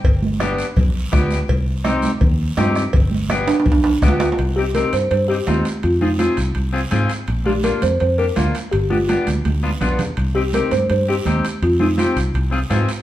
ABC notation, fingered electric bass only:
X:1
M:4/4
L:1/8
Q:1/4=166
K:Gphr
V:1 name="Fingered electric bass" clef=bass
G,,,4 =B,,,2 D,,2 | C,,4 E,,2 G,,2 | G,,,4 =B,,,2 D,,2 | [K:Cm] C,,3 G,, G,,2 E,, z |
F,,3 C,, C,,2 A,, z | B,,,3 F,, F,,2 D,, z | G,,,3 D,, D,,2 =B,,, z | C,,3 G,, G,,2 E,, z |
F,,3 C,, C,,2 A,, z |]